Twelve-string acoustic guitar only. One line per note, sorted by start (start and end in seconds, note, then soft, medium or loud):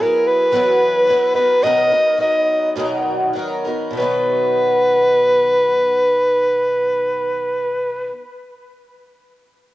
0.00 0.52 F#3 medium
0.00 0.53 B3 medium
0.00 0.53 E4 medium
0.00 0.53 B4 medium
0.52 1.07 E3 medium
0.52 1.07 F#3 loud
0.52 1.08 B3 loud
0.52 1.08 E4 medium
0.52 1.10 B4 loud
1.07 1.35 F#3 medium
1.07 1.35 B3 medium
1.07 1.34 E4 medium
1.07 1.33 B4 medium
1.34 1.62 F#3 soft
1.34 1.62 B3 soft
1.34 1.62 D#4 soft
1.34 1.62 A#4 medium
1.62 1.90 B2 medium
1.62 1.90 D#3 medium
1.62 1.91 F#3 medium
1.62 1.90 B3 medium
1.62 1.90 D#4 medium
1.62 1.88 A#4 loud
1.89 2.16 F#3 soft
1.89 2.18 B3 soft
1.89 2.18 D#4 medium
1.89 2.18 A#4 medium
2.18 2.76 F#3 medium
2.18 2.76 B3 medium
2.18 2.77 D#4 medium
2.18 2.77 A#4 medium
2.75 3.35 B2 medium
2.75 3.94 D#3 medium
2.75 3.33 F#3 medium
2.75 3.35 B3 medium
2.75 3.36 D#4 loud
2.75 3.36 A#4 medium
3.33 3.64 F#3 medium
3.33 3.65 B3 medium
3.33 3.64 D#4 medium
3.33 3.63 A#4 medium
3.65 3.96 F#3 soft
3.65 3.96 B3 medium
3.65 3.96 D#4 medium
3.65 3.95 A#4 medium
3.91 8.11 B2 medium
3.95 8.15 D#3 medium
3.95 8.17 F#3 medium
4.00 8.20 B3 loud
4.00 8.22 D#4 medium